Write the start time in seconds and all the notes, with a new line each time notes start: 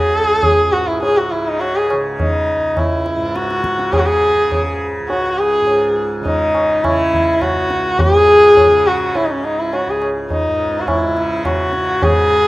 Already playing: G#2 C#3 G#4
0.06 C#2
0.43 tabla tin, tabla ge
0.68 G#2
0.72 F#4
0.87 E4
1.03 G#4, tabla tin
1.18 F#4
1.31 C#3 E4
1.48 D#4
1.60 F#4, tabla tin
1.76 G#4
1.90 C#3, tabla na
2.20 D#4, tabla tin, tabla ge
2.54 C#2
2.77 E4, tabla na, tabla ge
3.06 tabla te
3.16 G#2
3.35 F#4, tabla te
3.50 tabla te
3.64 tabla ke
3.76 C#3, tabla te
3.93 G#4, tabla tin, tabla ge
3.99 F#4
4.06 G#4
4.36 C#3
4.52 tabla tin, tabla ge
5.00 C#2
5.10 F#4, tabla tin
5.38 G#4
5.61 G#2
5.67 tabla tin
6.21 C#3 D#4
6.25 tabla tin, tabla ge
6.55 tabla na
6.83 C#3 E4, tabla na, tabla ge
7.14 tabla ge
7.42 C#2 F#4, tabla na, tabla ge
7.70 tabla te
7.99 G#4, tabla tin, tabla ge
8.06 G#2
8.57 tabla tin, tabla ge
8.66 C#3
8.87 F#4
9.15 E4, tabla tin
9.25 C#3 D#4
9.31 C#4
9.45 D#4
9.59 E4
9.73 F#4, tabla tin
9.87 C#2 G#4
10.02 tabla na
10.30 D#4, tabla tin, tabla ge
10.48 G#2
10.80 F#4
10.88 E4, tabla na, tabla ge
11.08 C#3
11.17 tabla te
11.45 F#4, tabla na, tabla ge
11.69 C#3
11.73 tabla te
12.02 G#2 G#4, tabla tin, tabla ge